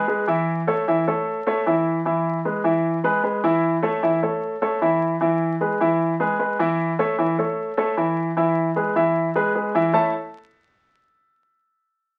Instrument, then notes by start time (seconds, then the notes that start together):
grand piano
0.08 G#3 G#4 B4
0.28 E3 E4 E5
0.67 A3 A4 C#5
0.88 E3 E4 E5
1.07 A3 A4 C#5
1.47 A3 A4 C#5
1.66 E3 E4 E5
2.05 E3 E4 E5
2.45 G#3 G#4 B4
2.64 E3 E4 E5
3.04 G#3 G#4 B4
3.23 G#3 G#4 B4
3.44 E3 E4 E5
3.83 A3 A4 C#5
4.03 E3 E4 E5
4.22 A3 A4 C#5
4.62 A3 A4 C#5
4.82 E3 E4 E5
5.21 E3 E4 E5
5.61 G#3 G#4 B4
5.80 E3 E4 E5
6.20 G#3 G#4 B4
6.39 G#3 G#4 B4
6.59 E3 E4 E5
6.99 A3 A4 C#5
7.18 E3 E4 E5
7.38 A3 A4 C#5
7.77 A3 A4 C#5
7.97 E3 E4 E5
8.37 E3 E4 E5
8.76 G#3 G#4 B4
8.96 E3 E4 E5
9.36 G#3 G#4 B4
9.55 G#3 G#4 B4
9.75 E3 E4 E5
9.93 A3 E4 A4 C#5 E5 A5